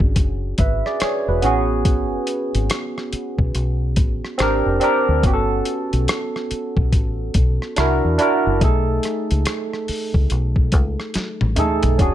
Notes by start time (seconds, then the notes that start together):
Already playing: C#4 D4 F#4 G#4
0.00 G#1, kick
0.16 F#1, kick, closed hi-hat
0.58 G#1 B4 E5, kick, closed hi-hat
0.86 G#4 D5, cross-stick
1.00 G#4 C#5, muted fingered electric bass stroke, cross-stick, closed hi-hat
1.28 E1 F#4 B4
1.42 A1 B3 C#4 F#4 G#4, closed hi-hat
1.85 kick, closed hi-hat
2.27 closed hi-hat
2.55 G#1, closed hi-hat
2.70 cross-stick, closed hi-hat
2.98 cross-stick
3.13 muted fingered electric bass stroke, closed hi-hat
3.39 B1, kick
3.55 B1, closed hi-hat
3.96 A1, kick, closed hi-hat
4.25 cross-stick
4.38 G#1 C4 D4 G4, cross-stick, closed hi-hat
4.42 A#4
4.66 F1
4.80 C4 D4 G4 A#4, closed hi-hat
5.09 D2
5.23 G1 B3 C#4 F#4, kick, closed hi-hat
5.27 G4
5.33 A4
5.65 closed hi-hat
5.93 B1, closed hi-hat
6.08 cross-stick, closed hi-hat
6.36 cross-stick
6.51 muted fingered electric bass stroke, closed hi-hat
6.77 B1, kick
6.93 A1, kick, closed hi-hat
7.34 B1, kick, closed hi-hat
7.62 cross-stick
7.76 C2 D4 E4 F#4 A#4, cross-stick, closed hi-hat
8.05 E2
8.18 D4 E4 F#4, closed hi-hat
8.22 A#4
8.47 F#1
8.61 B1 A3 D#4 G#4 A4, kick, closed hi-hat
9.03 cross-stick, closed hi-hat
9.31 C#2, closed hi-hat
9.46 cross-stick, closed hi-hat
9.73 cross-stick
9.88 muted fingered electric bass stroke, open hi-hat
10.14 C#2, kick
10.30 B1, closed hi-hat
10.56 kick
10.72 C#2, kick, closed hi-hat
11.00 cross-stick
11.14 muted fingered electric bass stroke, snare, closed hi-hat
11.41 A1, high tom
11.56 A3 D#4 G#4 A4, closed hi-hat, mid tom
11.83 B1, closed hi-hat, floor tom
11.98 E1 C#4 D4 F#4, kick, closed hi-hat
12.02 G#4